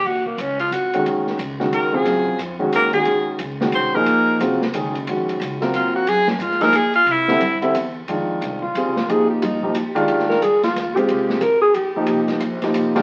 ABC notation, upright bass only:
X:1
M:3/4
L:1/8
Q:"Swing" 1/4=180
K:Ebdor
V:1 name="Upright bass" clef=bass
E,,2 D,,2 A,,,2 | B,,, z D,,2 A,,2 | G,,2 F,,2 E,,2 | B,,,2 D,,2 C,,2 |
B,,,2 F,,,2 G,,,2 | B,,,2 D,,2 E,,2 | G,,2 A,,2 B,,2 | C,2 =G,,2 =E,,2 |
[K:Fdor] F,,2 C,,2 (3E,, C,, A,,, | F,,2 G,,2 =A,,2 | A,,2 G,,2 E,,2 | C,,2 A,,,2 B,,,2 |
C,,2 B,,,2 C,,2 |]